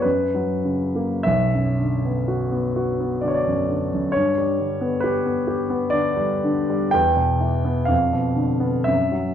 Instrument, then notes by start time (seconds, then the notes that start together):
grand piano
0.02 F#2 B4
0.35 F#3
0.65 C#3
0.95 A#3
1.23 B1 E5
1.54 F#2
1.80 D3
2.05 B3
2.28 F#4
2.52 B3
2.76 F#4
3.00 B3
3.21 D3 D5
3.28 C#5
3.34 D5
3.48 F#2
3.69 D3
3.94 F#2
4.12 G2 C#5
4.38 G3
4.60 D3
4.81 B3
5.00 G4 B4
5.26 B3
5.48 G4
5.70 B3
5.90 D3 D5
6.17 G3
6.44 D3
6.70 G3
6.91 E2 G5
7.17 B2
7.40 E3
7.65 B3
7.85 F2 F5
8.13 B2
8.36 D3
8.60 B3
8.84 F#2 E5
9.12 F#3